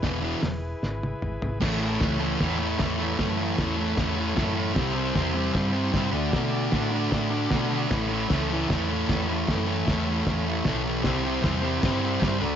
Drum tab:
CC |--------|x-x-x-x-|x-x-x-x-|x-x-x-x-|
HH |o-o-----|--------|--------|--------|
SD |o-o-o---|o-o-o-o-|o-o-o-o-|o-o-o-o-|
T1 |-----o--|--------|--------|--------|
T2 |------o-|--------|--------|--------|
FT |-------o|--------|--------|--------|
BD |o-------|o-o-o-o-|o-o-o-o-|o-o-o-o-|

CC |x-x-x-x-|x-x-x-x-|x-x-x-x-|x-x-x-x-|
HH |--------|--------|--------|--------|
SD |o-o-o-o-|o-o-o-o-|o-o-o-o-|o-o-o-o-|
T1 |--------|--------|--------|--------|
T2 |--------|--------|--------|--------|
FT |--------|--------|--------|--------|
BD |o-o-o-o-|o-o-o-o-|o-o-o-o-|o-o-o-o-|